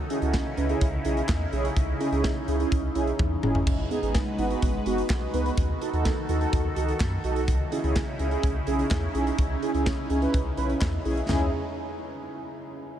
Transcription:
Already playing: C#3 C#4 D#4 E4
0.10 C#4 E4 G#4, closed hi-hat
0.22 C#2 C#4 E4 F#4, closed hi-hat
0.34 kick, snare
0.57 C#2 C#4 E4 B4, closed hi-hat
0.69 C#4 E4 G#4, closed hi-hat
0.81 C#2, kick, closed hi-hat
1.05 B1 C#4 E4 G#4, closed hi-hat
1.17 closed hi-hat
1.29 E2, kick, snare, clap
1.52 B1 C#4 E4 G#4, closed hi-hat
1.65 closed hi-hat
1.76 C#2, kick, closed hi-hat
2.00 C#4 E4 G#4, closed hi-hat
2.12 C#2 C#4 E4 G#4, closed hi-hat
2.24 kick, snare
2.48 C#2 C#4 E4 G#4, closed hi-hat
2.60 C#4 E4 G#4, closed hi-hat
2.72 C#2, kick, closed hi-hat
2.95 B1 C#4 E4 G#4, closed hi-hat
3.07 closed hi-hat
3.19 E2, kick, high tom
3.43 F#1 C#4 E4 G#4, mid tom
3.55 floor tom
3.67 G#1 G#3 F#4 B4, kick, crash
3.91 B3 D#4 G#4, closed hi-hat
4.03 G#1 B3 D#4 G#4, closed hi-hat
4.15 kick, snare
4.38 G#1 B3 D#4 F#4, closed hi-hat
4.50 B3 D#4 F#4, closed hi-hat
4.62 G#1, kick, closed hi-hat
4.86 F#1 B3 D#4 F#4, closed hi-hat
4.98 closed hi-hat
5.10 B1, kick, snare, clap
5.34 C#2 B3 D#4 B4, closed hi-hat
5.46 closed hi-hat
5.57 D#2 D#3 A4, kick, closed hi-hat
5.81 D#4 F#4 A4, closed hi-hat
5.93 D#2 D#4 F#4 A4, closed hi-hat
6.05 kick, snare
6.29 D#2 D#4 F#4 A4, closed hi-hat
6.41 D#4 F#4 A4, closed hi-hat
6.53 D#2, kick, closed hi-hat
6.76 C#2 D#4 F#4 A4, closed hi-hat
6.88 closed hi-hat
7.00 F#2, kick, snare, clap
7.24 B1 D#4 F#4 A4, closed hi-hat
7.36 closed hi-hat
7.48 C#2 C#3 C#4 D#4 E4, kick, closed hi-hat
7.72 C#4 E4 G#4, closed hi-hat
7.84 C#2 C#4 E4 G#4, closed hi-hat
7.96 kick, snare
8.19 C#2 C#4 E4 G#4, closed hi-hat
8.31 C#4 E4 G#4, closed hi-hat
8.43 C#2, kick, closed hi-hat
8.67 B1 C#4 E4 G#4, closed hi-hat
8.79 closed hi-hat
8.91 E2, kick, snare, clap
9.15 B1 C#4 E4 G#4, closed hi-hat
9.27 closed hi-hat
9.39 C#2, kick, closed hi-hat
9.62 C#4 E4 G#4, closed hi-hat
9.74 C#2 C#4 E4 G#4, closed hi-hat
9.86 kick, snare
10.10 C#2 C#4 E4 G#4, closed hi-hat
10.22 C#4 E4 B4, closed hi-hat
10.34 C#2, kick, closed hi-hat
10.57 B1 C#4 E4 B4, closed hi-hat
10.70 closed hi-hat
10.81 E2, kick, snare, clap
11.05 B1 C#4 E4 G#4, open hi-hat
11.17 closed hi-hat
11.29 C#2 C#4 E4 G#4, snare, floor tom, splash

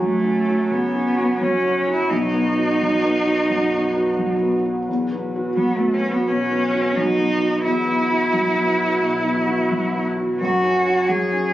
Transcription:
Already playing: F#1 F#2 F#3 C#4 F#4 C#5
0.02 F#3 A3
0.25 C#4
0.48 F#4
0.71 C#3 B3
0.95 C#4
1.17 F#4
1.41 F#3 C#4
1.64 C#4
1.87 F#4
1.93 E4
2.10 B1 D#4 B4
2.34 B3
2.58 F#4
2.81 F#3
3.04 B3
3.24 F#4
3.50 F#2
3.73 B3
3.97 F#4
4.19 F#3
4.42 B3
4.66 F#4
4.88 E1 E2 F#3 F#4 B4
5.12 B3
5.36 F#4
5.57 F#3 B3
5.75 A3
5.80 B3
5.94 C#4
6.05 F#4
6.11 B3
6.27 B2 C#4
6.51 B3
6.74 F#4
6.96 F#3 D#4
7.19 B3
7.42 F#4
7.62 E1 E2 F#3 E4 F#4 B4
7.87 B3
8.10 F#4
8.33 F#3
8.55 B3
8.78 F#4
9.00 B2
9.23 B3
9.47 F#4
9.71 F#3
9.94 B3
10.17 F#4
10.39 F#1 F#2 F#4 C#5
10.63 C#4
10.86 F#4
11.08 F#3 G#4
11.33 C#4

